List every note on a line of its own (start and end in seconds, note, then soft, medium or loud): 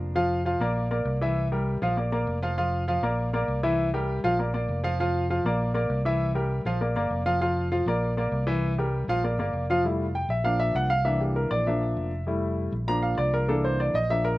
0.00 0.55 F1 loud
0.00 0.13 F3 medium
0.00 0.13 A#3 medium
0.00 0.13 D4 medium
0.15 0.40 F3 medium
0.15 0.40 F4 medium
0.15 0.40 F5 medium
0.45 0.58 F3 medium
0.45 0.58 F4 medium
0.45 0.58 F5 medium
0.60 1.02 A#1 medium
0.60 0.86 A#3 medium
0.60 0.86 A#4 medium
0.60 0.86 D5 medium
0.91 1.16 A#3 medium
0.91 1.16 A#4 medium
0.91 1.16 D5 medium
1.05 1.76 C2 loud
1.21 1.46 E3 medium
1.21 1.47 E4 medium
1.21 1.47 E5 medium
1.52 1.77 G3 medium
1.52 1.77 G4 medium
1.52 1.77 A#4 medium
1.82 2.24 A#1 medium
1.82 1.94 F3 loud
1.82 1.95 F4 medium
1.82 1.95 F5 medium
1.97 2.09 A#3 medium
1.97 2.09 A#4 medium
1.97 2.10 D5 medium
2.12 2.37 A#3 medium
2.12 2.37 A#4 medium
2.12 2.37 D5 medium
2.27 2.97 F1 loud
2.42 2.55 F3 medium
2.42 2.55 F4 medium
2.42 2.55 F5 medium
2.58 2.82 F3 medium
2.58 2.82 F4 medium
2.58 2.83 F5 medium
2.88 3.00 F3 medium
2.88 3.00 F4 medium
2.88 3.00 F5 medium
3.02 3.45 A#1 loud
3.02 3.28 A#3 medium
3.02 3.28 A#4 medium
3.02 3.28 D5 medium
3.33 3.58 A#3 medium
3.33 3.58 A#4 medium
3.33 3.58 D5 medium
3.48 4.18 C2 medium
3.63 3.88 E3 loud
3.63 3.88 E4 loud
3.63 3.88 E5 medium
3.94 4.18 G3 medium
3.94 4.18 G4 medium
3.94 4.19 A#4 medium
4.24 4.66 A#1 loud
4.24 4.36 F3 medium
4.24 4.36 F4 loud
4.24 4.37 F5 loud
4.39 4.51 A#3 medium
4.39 4.52 A#4 medium
4.39 4.52 D5 medium
4.54 4.79 A#3 medium
4.54 4.79 A#4 medium
4.54 4.79 D5 medium
4.69 5.39 F1 loud
4.84 4.96 F3 loud
4.84 4.96 F4 medium
4.84 4.97 F5 loud
5.00 5.24 F3 loud
5.00 5.25 F4 medium
5.00 5.25 F5 medium
5.30 5.42 F3 medium
5.30 5.42 F4 medium
5.30 5.43 F5 medium
5.45 5.87 A#1 loud
5.45 5.70 A#3 medium
5.45 5.70 A#4 medium
5.45 5.70 D5 medium
5.74 5.99 A#3 medium
5.74 5.99 A#4 medium
5.74 6.00 D5 medium
5.90 6.60 C2 medium
6.05 6.30 E3 medium
6.05 6.30 E4 medium
6.05 6.30 E5 medium
6.34 6.60 G3 medium
6.34 6.60 G4 medium
6.34 6.60 A#4 medium
6.65 6.94 A#1 loud
6.65 6.78 F3 loud
6.65 6.79 F4 loud
6.65 6.79 F5 medium
6.81 6.93 A#3 medium
6.81 6.93 A#4 medium
6.81 6.94 D5 medium
6.96 7.10 G1 medium
6.96 7.21 A#3 medium
6.96 7.21 A#4 medium
6.96 7.21 D5 medium
7.10 7.81 F1 loud
7.26 7.38 F3 medium
7.26 7.39 F4 loud
7.26 7.39 F5 loud
7.41 7.66 F3 medium
7.41 7.66 F4 medium
7.41 7.66 F5 medium
7.72 7.84 F3 medium
7.72 7.84 F4 medium
7.72 7.84 F5 medium
7.86 8.29 A#1 loud
7.86 8.12 A#3 medium
7.86 8.12 A#4 medium
7.86 8.12 D5 medium
8.17 8.42 A#3 medium
8.17 8.42 A#4 medium
8.17 8.43 D5 medium
8.32 9.02 C2 medium
8.47 8.72 E3 loud
8.47 8.72 E4 medium
8.47 8.73 E5 medium
8.78 9.03 G3 medium
8.78 9.03 G4 medium
8.78 9.03 A#4 medium
9.08 9.36 A#1 loud
9.08 9.21 F3 medium
9.08 9.21 F4 loud
9.08 9.21 F5 loud
9.24 9.36 A#3 medium
9.24 9.36 A#4 medium
9.24 9.36 D5 medium
9.38 9.52 G1 medium
9.38 9.64 A#3 medium
9.38 9.64 A#4 medium
9.38 9.64 D5 medium
9.53 10.24 F1 medium
9.70 9.82 F3 medium
9.70 9.82 F4 medium
9.70 9.82 F5 medium
9.84 10.04 G3 medium
9.84 10.05 A3 medium
9.84 10.05 E4 medium
10.15 10.30 G5 medium
10.29 10.71 A#1 loud
10.29 10.45 E5 medium
10.44 10.88 F3 medium
10.44 10.88 A#3 medium
10.44 10.88 D4 medium
10.44 10.59 F5 medium
10.60 10.75 E5 loud
10.75 11.45 C2 loud
10.75 10.90 F#5 medium
10.90 11.05 F5 loud
11.05 11.63 E3 medium
11.05 11.63 A#3 medium
11.05 11.64 D4 medium
11.05 11.20 E5 medium
11.21 11.35 G4 medium
11.36 11.51 A#4 medium
11.51 11.93 A#1 medium
11.51 11.66 D5 medium
11.67 12.10 F3 medium
11.67 12.10 A#3 medium
11.67 12.10 D4 medium
11.67 12.23 E5 medium
11.97 12.67 F1 medium
12.27 12.70 G3 medium
12.27 12.71 A3 medium
12.27 12.71 E4 medium
12.72 13.15 A#1 loud
12.88 13.46 F3 medium
12.88 13.46 A#3 medium
12.88 13.46 D4 medium
12.88 13.03 A#5 medium
13.03 13.18 F5 medium
13.18 13.89 C2 loud
13.18 13.33 D5 medium
13.34 13.48 A#4 medium
13.48 13.92 E3 medium
13.48 13.92 A#3 medium
13.48 13.92 D4 medium
13.48 13.64 A4 medium
13.64 13.79 C5 medium
13.80 13.94 D5 medium
13.94 14.37 A#1 medium
13.94 14.10 D#5 loud
14.10 14.30 F3 medium
14.10 14.30 A#3 soft
14.10 14.31 D4 medium
14.10 14.25 E5 medium
14.25 14.34 A#4 medium